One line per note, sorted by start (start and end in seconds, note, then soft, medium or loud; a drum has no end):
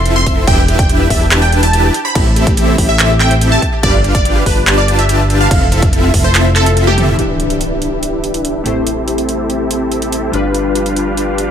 0.00 0.45 F1 loud
0.00 0.45 C4 medium
0.00 0.45 E4 medium
0.00 0.45 F4 medium
0.00 0.45 A4 medium
0.00 0.45 E5 loud
0.06 0.13 A4 medium
0.06 closed hi-hat medium
0.16 0.25 E5 medium
0.16 0.32 C6 loud
0.26 0.33 E5 loud
0.26 kick medium
0.26 closed hi-hat medium
0.37 0.44 A4 medium
0.47 1.08 E1 medium
0.47 1.08 D4 medium
0.47 1.08 E4 medium
0.47 0.57 G4 medium
0.47 1.08 G4 medium
0.47 1.08 B4 medium
0.47 1.08 E5 medium
0.47 0.63 G5 loud
0.47 kick loud
0.47 closed hi-hat medium
0.47 crash medium
0.58 0.65 G4 loud
0.68 0.73 G4 loud
0.68 closed hi-hat medium
0.79 0.86 D5 medium
0.79 0.95 G5 medium
0.79 kick loud
0.79 closed hi-hat medium
0.89 0.99 G4 medium
0.89 closed hi-hat medium
1.00 1.04 E5 medium
1.10 1.91 E1 loud
1.10 1.93 D4 medium
1.10 1.93 E4 medium
1.10 1.20 G4 medium
1.10 1.93 G4 medium
1.10 1.93 B4 medium
1.10 1.26 E5 loud
1.10 1.93 A5 loud
1.10 kick medium
1.10 open hi-hat medium
1.21 1.28 G4 loud
1.31 1.36 G4 loud
1.31 clap loud
1.31 closed hi-hat medium
1.42 1.49 D5 medium
1.42 1.52 G5 loud
1.52 1.62 G4 medium
1.52 closed hi-hat medium
1.63 1.67 E5 medium
1.63 1.84 A5 loud
1.63 closed hi-hat medium
1.73 1.83 G4 medium
1.73 closed hi-hat medium
1.84 1.91 G4 loud
1.94 1.99 G4 loud
1.94 closed hi-hat medium
2.05 2.12 C5 medium
2.05 2.26 B5 loud
2.15 2.76 A1 medium
2.15 2.76 C4 medium
2.15 2.76 E4 medium
2.15 2.25 G4 medium
2.15 2.76 G4 medium
2.15 2.76 A4 medium
2.15 2.76 E5 loud
2.15 2.76 E5 medium
2.15 kick loud
2.15 closed hi-hat medium
2.15 crash medium
2.26 2.30 E5 medium
2.36 2.46 G4 medium
2.36 closed hi-hat medium
2.47 2.54 G4 loud
2.47 kick loud
2.47 closed hi-hat medium
2.57 2.62 G4 loud
2.57 closed hi-hat medium
2.68 2.75 C5 medium
2.78 3.59 A1 loud
2.78 3.61 C4 medium
2.78 3.61 E4 medium
2.78 2.88 G4 medium
2.78 3.61 A4 medium
2.78 3.61 E5 loud
2.78 kick medium
2.78 open hi-hat loud
2.89 3.05 E5 loud
2.89 2.93 E5 medium
2.99 3.09 G4 medium
2.99 clap loud
2.99 closed hi-hat medium
3.10 3.17 G4 loud
3.20 3.24 G4 loud
3.20 3.36 G5 medium
3.20 clap medium
3.20 closed hi-hat medium
3.31 3.38 C5 medium
3.31 closed hi-hat medium
3.41 3.51 G4 medium
3.41 closed hi-hat medium
3.52 3.56 E5 medium
3.52 3.68 A5 loud
3.62 3.71 G4 medium
3.62 kick medium
3.62 closed hi-hat medium
3.73 3.80 G4 loud
3.83 4.44 G1 loud
3.83 4.44 D4 medium
3.83 4.44 F4 medium
3.83 3.87 G4 loud
3.83 4.44 G4 medium
3.83 4.44 B4 medium
3.83 3.99 D5 loud
3.83 4.44 F5 medium
3.83 kick loud
3.83 closed hi-hat medium
3.83 crash soft
3.93 4.01 D5 medium
4.04 4.14 G4 medium
4.04 closed hi-hat medium
4.15 4.31 D5 medium
4.15 4.19 F5 medium
4.15 kick loud
4.15 closed hi-hat medium
4.25 4.34 G4 medium
4.25 closed hi-hat medium
4.36 4.43 G4 loud
4.46 5.49 G1 loud
4.46 4.50 G4 loud
4.46 5.49 G4 medium
4.46 5.49 B4 medium
4.46 4.62 B4 loud
4.46 5.49 A5 loud
4.46 kick medium
4.46 open hi-hat medium
4.57 4.64 D5 medium
4.67 4.77 G4 medium
4.67 clap loud
4.67 closed hi-hat medium
4.78 4.88 D5 loud
4.78 4.82 F5 medium
4.88 4.97 G4 medium
4.88 closed hi-hat medium
4.98 5.05 G4 loud
4.98 5.20 E5 medium
4.98 closed hi-hat medium
5.09 5.13 G4 loud
5.09 closed hi-hat medium
5.19 5.26 D5 medium
5.30 5.40 G4 medium
5.30 closed hi-hat medium
5.40 5.45 F5 medium
5.40 5.62 F5 loud
5.51 6.12 F1 loud
5.51 6.11 C4 medium
5.51 6.11 E4 medium
5.51 6.11 F4 medium
5.51 6.11 A4 medium
5.51 5.60 A4 medium
5.51 6.11 E5 loud
5.51 kick loud
5.51 closed hi-hat medium
5.51 crash soft
5.61 5.68 A4 loud
5.72 5.76 A4 loud
5.72 closed hi-hat medium
5.82 5.89 E5 medium
5.82 kick loud
5.82 closed hi-hat medium
5.93 6.03 A4 medium
5.93 closed hi-hat medium
6.04 6.08 F5 medium
6.14 7.17 F1 loud
6.14 6.23 A4 medium
6.14 kick medium
6.14 open hi-hat loud
6.24 6.31 A4 loud
6.24 6.40 C5 loud
6.35 6.39 A4 loud
6.35 clap loud
6.35 closed hi-hat medium
6.45 6.52 E5 medium
6.56 6.66 A4 medium
6.56 6.72 A4 loud
6.56 clap medium
6.56 closed hi-hat medium
6.66 6.71 F5 medium
6.66 closed hi-hat medium
6.77 6.86 A4 medium
6.77 closed hi-hat medium
6.87 7.03 G4 loud
6.87 6.94 A4 loud
6.87 high tom medium
6.98 7.02 A4 loud
6.98 closed hi-hat medium
6.98 mid tom medium
7.08 7.15 E5 medium
7.08 mid tom medium
7.17 8.62 E3 medium
7.17 8.63 D4 medium
7.17 8.63 E4 medium
7.17 8.63 G4 medium
7.17 8.64 G4 medium
7.17 8.63 B4 medium
7.17 closed hi-hat medium
7.17 impact medium
7.21 8.64 E5 medium
7.40 closed hi-hat medium
7.50 closed hi-hat medium
7.61 closed hi-hat medium
7.82 closed hi-hat medium
8.03 closed hi-hat medium
8.24 closed hi-hat medium
8.34 closed hi-hat medium
8.45 closed hi-hat medium
8.64 10.31 A1 medium
8.64 10.30 A3 medium
8.64 10.31 C4 medium
8.64 10.31 E4 medium
8.64 10.31 G4 medium
8.64 10.31 A4 medium
8.64 10.32 C5 medium
8.64 10.31 E5 medium
8.64 closed hi-hat medium
8.87 closed hi-hat medium
9.08 closed hi-hat medium
9.18 closed hi-hat medium
9.29 closed hi-hat medium
9.50 closed hi-hat medium
9.71 closed hi-hat medium
9.92 closed hi-hat medium
10.02 closed hi-hat medium
10.12 closed hi-hat medium
10.31 11.51 G1 medium
10.31 11.51 G3 medium
10.31 11.51 D4 medium
10.31 11.51 F4 medium
10.31 11.51 G4 medium
10.31 11.51 B4 medium
10.31 11.51 F5 medium
10.31 closed hi-hat medium
10.55 closed hi-hat medium
10.75 closed hi-hat medium
10.86 closed hi-hat medium
10.97 closed hi-hat medium
11.17 closed hi-hat medium
11.38 closed hi-hat medium